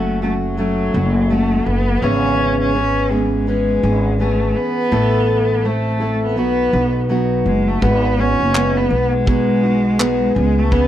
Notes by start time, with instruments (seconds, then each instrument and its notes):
Already playing: upright bass F#1, steel-string acoustic guitar F#3 A3 C#4 F#4, cello A3
0.22 steel-string acoustic guitar F#3 A3 C#4 F#4, cello A3
0.44 cello F#3
0.57 steel-string acoustic guitar F#3 A3 C#4 F#4
0.94 upright bass F#1, steel-string acoustic guitar F#3 A3 C#4 F#4
1.30 steel-string acoustic guitar F#3 A3 C#4 F#4, cello A3
1.66 upright bass F#1, cello B3
2.02 upright bass G#1, steel-string acoustic guitar G#2 C#3 E3 B3 C#4 G#4, cello C#4
2.61 cello C#4
2.74 steel-string acoustic guitar E3 B3 C#4 G#4
3.10 steel-string acoustic guitar E3 B3 C#4 G#4, cello G#3
3.34 cello G#3
3.47 steel-string acoustic guitar E3 B3 C#4 G#4
3.83 upright bass G#1, steel-string acoustic guitar E3 B3 C#4 G#4
4.19 steel-string acoustic guitar E3 B3 C#4 G#4, cello A3
4.56 cello B3
4.91 upright bass A1, steel-string acoustic guitar A2 E3 A3 E4 A4
5.65 steel-string acoustic guitar A3 C4 E4 A4, cello A3
6.00 steel-string acoustic guitar A3 C4 E4 A4
6.23 cello B3
6.36 upright bass B1, steel-string acoustic guitar F#3 B3 D#4 F#4
6.73 upright bass B1, steel-string acoustic guitar B3 D#4 F#4
7.09 steel-string acoustic guitar F#3 B3 D#4 F#4
7.46 upright bass F#1, cello G#3
7.68 cello A3
7.81 upright bass G#1, steel-string acoustic guitar G#3 B3 D#4 F#4, cello B3, kick
8.17 steel-string acoustic guitar B3 D#4 F#4, cello C#4
8.40 upright bass F#1
8.54 steel-string acoustic guitar G#3 B3 D#4 F#4, clap
8.77 cello B3
8.90 upright bass B1
9.13 cello G#3
9.26 steel-string acoustic guitar G#3 B3 D#4 F#4, kick
9.63 steel-string acoustic guitar B3 D#4 F#4
9.99 steel-string acoustic guitar G#3 B3 D#4 F#4, clap
10.34 upright bass C#2, cello G#3, steel-string acoustic guitar B3 C#4 G#4
10.58 cello A3
10.71 steel-string acoustic guitar C#3 E3 B3 C#4 G#4, cello B3, kick